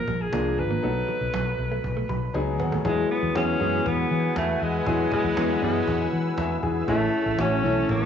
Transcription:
Already playing: grand piano F3 A#3 D4 A#4, alto saxophone A#4
0.08 fretless electric bass A#1, clean electric guitar G3, cajon bass
0.22 alto saxophone G#4
0.32 fretless electric bass C2, grand piano F3 A#3 D4 A#4, clean electric guitar A#3, cajon slap
0.58 fretless electric bass G#1, alto saxophone B4, muted clean electric guitar stroke, cajon slap
0.71 clean electric guitar A#3
0.82 fretless electric bass B1, grand piano F#3 B3 D#4 A4, clean electric guitar A3, cajon slap
1.08 clean electric guitar F#3, cajon slap
1.21 fretless electric bass B1, muted clean electric guitar stroke
1.33 fretless electric bass B1, clean electric guitar F#3, cajon slap
1.59 fretless electric bass B1, muted clean electric guitar stroke, cajon slap
1.72 clean electric guitar A3
1.84 fretless electric bass B1, muted clean electric guitar stroke, cajon bass
1.97 clean electric guitar A3
2.09 fretless electric bass B1, clean electric guitar F#3, grand piano B5, cajon bass
2.34 fretless electric bass C#2, grand piano F#3 B3 D#4 G#4 G#5, muted clean electric guitar stroke, cajon slap
2.60 fretless electric bass D#2, clean electric guitar B3, grand piano F#5, cajon bass
2.72 clean electric guitar A3, cajon bass
2.85 fretless electric bass E2, grand piano F#3 G#3 B3 E4 G#4, alto saxophone G#3, analog synth pad B4 F#5 G#5 E6, cajon bass
3.10 alto saxophone B3, cajon slap
3.23 fretless electric bass E2, cajon slap
3.35 fretless electric bass E2, analog polysynth E3 B3 G#4, grand piano F#3 G#3 B3 E4 G#4, alto saxophone C#4, cajon slap
3.60 fretless electric bass F#2, analog polysynth E3 B3 G#4, grand piano F#3 G#3 B3 E4 G#4, cajon slap
3.73 cajon slap
3.86 fretless electric bass E2, alto saxophone B3, cajon bass
4.11 fretless electric bass E3, cajon slap
4.36 fretless electric bass E2, alto saxophone A3, cajon slap
4.61 fretless electric bass E2, alto saxophone G#3, cajon slap
4.86 fretless electric bass E2, grand piano F#3 G#3 B3 E4 G#4, cajon bass
5.12 alto saxophone G#3, cajon bass
5.24 fretless electric bass E2, cajon slap
5.36 fretless electric bass E2, analog polysynth E3 B3 G#4, grand piano F#3 G#3 B3 E4 G#4, cajon slap
5.61 fretless electric bass F#2, analog polysynth E3 B3 G#4, grand piano F#3 G#3 B3 E4 G#4, alto saxophone G#3
5.75 cajon slap
5.87 fretless electric bass E2, cajon bass
6.13 fretless electric bass E3, cajon slap
6.38 fretless electric bass E2, grand piano E5 G#5, cajon slap
6.63 fretless electric bass E2, grand piano E4 G#4 G#5, cajon bass
6.88 fretless electric bass A1, grand piano A3 C#4 E4, alto saxophone A3, analog synth pad C#5 A5, cajon bass
7.13 cajon slap
7.26 fretless electric bass A1, cajon slap
7.38 fretless electric bass A1, analog polysynth E3 C#4 A4, grand piano A3 C#4 F#4, alto saxophone C#4, cajon slap
7.63 fretless electric bass B1, analog polysynth E3 C#4 A4, grand piano A3 C#4 E4, cajon slap
7.76 cajon slap
7.89 fretless electric bass A1, alto saxophone B3, cajon bass

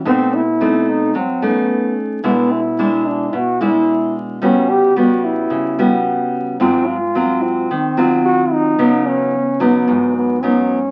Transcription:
0.05 nylon-string guitar B2 A3 C4 D#4, trombone C4
0.34 trombone E4
0.61 nylon-string guitar A3 C4 D#4
0.89 trombone D#4
1.15 nylon-string guitar F#3, trombone C4
1.42 nylon-string guitar A3 C#4 D#4, trombone B3
2.24 nylon-string guitar B2 G#3 D4 E4, trombone B3
2.52 trombone E4
2.79 nylon-string guitar G#3 D4 E4
3.08 trombone D4
3.33 nylon-string guitar B2, trombone F#4
3.61 nylon-string guitar G#3 D4 E4, trombone E4
4.42 nylon-string guitar C#3 G3 B3 F#4, trombone C#4
4.70 trombone G4
4.96 nylon-string guitar G3 B3 F#4, trombone F#4
5.24 trombone E4
5.50 nylon-string guitar C#3
5.79 nylon-string guitar G3 B3 F#4
6.60 nylon-string guitar G#2 F#3 C4 F4, trombone C4
6.87 trombone F4
7.15 nylon-string guitar F#3 C4 F4
7.42 trombone C4
7.71 nylon-string guitar D#3
7.97 nylon-string guitar F#3 C4 F4
8.25 trombone F#4
8.53 trombone D#4
8.79 nylon-string guitar C#3 F#3 B3 D#4
9.07 trombone C#4
9.60 nylon-string guitar F#3 B3 D#4, trombone B3
9.88 nylon-string guitar G#2
10.17 trombone B3
10.43 nylon-string guitar F#3 B3 D#4, trombone C#4

